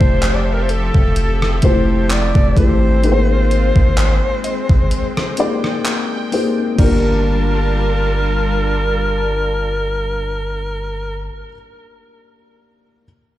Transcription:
Already playing: analog synth pad F3 C4 G4 A4 E5, felt piano A3 E4 F4 G4 C5, alto saxophone C5
0.01 808-style bass F1, kick
0.22 clap, closed hi-hat
0.35 alto saxophone D5
0.44 alto saxophone C5
0.53 alto saxophone A#4
0.62 alto saxophone C5
0.69 alto saxophone A4, closed hi-hat
0.94 808-style bass F1, kick
1.16 closed hi-hat
1.42 cross-stick
1.62 808-style bass F1, felt piano A3 E4 F4 G4 C5, alto saxophone C5, kick, closed hi-hat
2.10 alto saxophone D5, clap, closed hi-hat
2.35 808-style bass F1, kick
2.57 808-style bass G#1, felt piano A3 E4 F4 G4 A4, alto saxophone C5, kick, closed hi-hat
3.03 analog synth pad G#3 F4, felt piano A#3 D#4 F4 G#4 A#4, closed hi-hat
3.12 felt piano C5
3.51 closed hi-hat
3.76 808-style bass G#1, kick
3.97 clap, closed hi-hat
4.44 synth pluck D#5, closed hi-hat
4.69 808-style bass G#1, kick
4.91 analog synth pad G5, closed hi-hat
5.17 cross-stick
5.37 felt piano A#3 D#4 F4 G#4 D5, closed hi-hat
5.64 cross-stick
5.85 clap, closed hi-hat
6.32 felt piano A#3 D#4 F4 G#4 C5, open hi-hat
6.76 808-style bass G1, analog synth pad G3 D4 F4 A#4 A5, felt piano A#3 D4 F4, alto saxophone A#4, synth pluck D5, kick, crash
6.81 felt piano G4 A#4

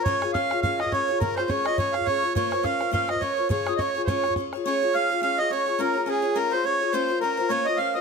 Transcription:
Already playing: hammered dulcimer A#4 C5 D#5 F5
0.03 steel-string acoustic guitar C#4 F4, accordion C#5, hammered dulcimer C#5, flute C#6, bodhran
0.08 steel-string acoustic guitar G#4 C#5
0.22 steel-string acoustic guitar F4 G#4 C#5, bodhran
0.33 steel-string acoustic guitar C#4 F4 G#4, accordion F5, hammered dulcimer F5, flute F6, bodhran
0.37 steel-string acoustic guitar C#5
0.50 steel-string acoustic guitar F4 G#4 C#5, bodhran
0.62 steel-string acoustic guitar C#4 F4 G#4 C#5, accordion F5, hammered dulcimer F5, flute F6, bodhran
0.79 steel-string acoustic guitar F4 G#4 C#5, accordion D#5, hammered dulcimer D#5, flute D#6, bodhran
0.86 bodhran
0.92 steel-string acoustic guitar C#4 F4 G#4 C#5, accordion C#5, hammered dulcimer C#5, flute C#6, bodhran
1.08 steel-string acoustic guitar F4 G#4 C#5
1.20 steel-string acoustic guitar C#4 F4 G#4 C#5, accordion A#4, hammered dulcimer A#4, flute A#5, bodhran
1.36 steel-string acoustic guitar F4 G#4 C#5, accordion C5, hammered dulcimer C5, flute C6, bodhran
1.48 steel-string acoustic guitar C#4 F4 G#4 C#5, accordion C#5, hammered dulcimer C#5, flute C#6, bodhran
1.65 steel-string acoustic guitar F4 G#4 C#5, accordion D#5, hammered dulcimer D#5, bodhran
1.78 steel-string acoustic guitar C#4 F4 G#4 C#5, accordion C#5, hammered dulcimer C#5, flute C#6, bodhran
1.93 steel-string acoustic guitar G#4 C#5, accordion F5, hammered dulcimer F5, bodhran
1.97 steel-string acoustic guitar F4, bodhran
2.06 steel-string acoustic guitar C#4 F4 G#4, accordion C#5, hammered dulcimer C#5, flute C#6, bodhran
2.10 steel-string acoustic guitar C#5
2.23 steel-string acoustic guitar F4 G#4 C#5
2.35 steel-string acoustic guitar A#3 C#4 F4 A#4 C5, accordion C#5, hammered dulcimer C#5, flute C#6, bodhran
2.51 steel-string acoustic guitar F4 A#4 C5, bodhran
2.63 steel-string acoustic guitar C#4 F4 A#4 C5, accordion F5, hammered dulcimer F5, flute F6, bodhran
2.79 steel-string acoustic guitar F4 A#4 C5, bodhran
2.91 steel-string acoustic guitar A#3 C#4 F4 A#4 C5, accordion F5, hammered dulcimer F5, flute F6, bodhran
3.08 steel-string acoustic guitar F4 A#4 C5, accordion D#5, hammered dulcimer D#5, flute D#6, bodhran
3.16 bodhran
3.21 steel-string acoustic guitar C#4 F4 A#4 C5, accordion C#5, hammered dulcimer C#5, flute C#6, bodhran
3.37 steel-string acoustic guitar F4 A#4 C5
3.49 steel-string acoustic guitar C#4 F4 G#4 C#5, accordion C#5, hammered dulcimer C#5, flute C#6, bodhran
3.66 steel-string acoustic guitar F4 G#4 C#5, flute D#6, bodhran
3.77 steel-string acoustic guitar C#4 F4 G#4, accordion C#5 D#5, hammered dulcimer C#5, flute C#6, bodhran
3.82 steel-string acoustic guitar C#5
3.95 steel-string acoustic guitar F4 G#4 C#5
4.05 steel-string acoustic guitar C#4 F4, accordion C5 C#5, hammered dulcimer C#5, flute C#6, bodhran
4.10 steel-string acoustic guitar G#4 C#5
4.24 steel-string acoustic guitar F4 G#4 C#5, bodhran
4.30 bodhran
4.36 steel-string acoustic guitar C#4 F4 G#4 C#5, bodhran
4.53 steel-string acoustic guitar G#4 C#5, bodhran
4.57 steel-string acoustic guitar F4
4.65 steel-string acoustic guitar C#4 F4 G#4 C#5, hammered dulcimer C#5, accordion C#5, flute C#6
4.81 steel-string acoustic guitar F4 G#4 C#5
4.93 steel-string acoustic guitar C#4 F4 G#4 C#5, hammered dulcimer F5, accordion F5, flute F6
5.10 steel-string acoustic guitar F4 G#4 C#5
5.21 steel-string acoustic guitar C#4 F4 G#4 C#5, accordion F5, hammered dulcimer F5, flute F6
5.38 steel-string acoustic guitar F4 G#4 C#5, accordion D#5, hammered dulcimer D#5, flute D#6
5.50 steel-string acoustic guitar C#4 F4 G#4 C#5, accordion C#5, hammered dulcimer C#5, flute C#6
5.66 steel-string acoustic guitar F4 G#4 C#5
5.79 steel-string acoustic guitar C#4 F4 G#4 C#5, hammered dulcimer A#4, accordion A#4, flute A#5
5.94 steel-string acoustic guitar F4 G#4 C#5, hammered dulcimer A#4
6.06 steel-string acoustic guitar C#4 F4 G#4 C#5, hammered dulcimer G#4, accordion G#4, flute G#5
6.22 steel-string acoustic guitar F4 G#4 C#5
6.35 steel-string acoustic guitar C#4 F4 G#4 C#5, accordion A#4, hammered dulcimer A#4, flute A#5
6.51 steel-string acoustic guitar F4 G#4 C#5, accordion C5, hammered dulcimer C5, flute C6
6.64 steel-string acoustic guitar C#4 F4 G#4 C#5, accordion C#5, hammered dulcimer C#5, flute C#6
6.80 steel-string acoustic guitar F4 G#4 C#5
6.92 steel-string acoustic guitar A#3 C#4 F4 A#4 C5, accordion C5, hammered dulcimer C5, flute C6
7.08 steel-string acoustic guitar F4 A#4 C5
7.21 steel-string acoustic guitar C#4 F4 A#4 C5, accordion A#4, hammered dulcimer A#4, flute A#5
7.37 steel-string acoustic guitar F4 A#4 C5
7.49 steel-string acoustic guitar A#3 C#4 F4 A#4 C5, accordion C#5, hammered dulcimer C#5, flute C#6
7.65 steel-string acoustic guitar F4 A#4 C5, accordion D#5, hammered dulcimer D#5, flute D#6
7.77 steel-string acoustic guitar C#4 F4 A#4 C5, accordion F5, hammered dulcimer F5, flute F6
7.93 steel-string acoustic guitar F4 A#4 C5, accordion D#5, hammered dulcimer D#5, flute D#6

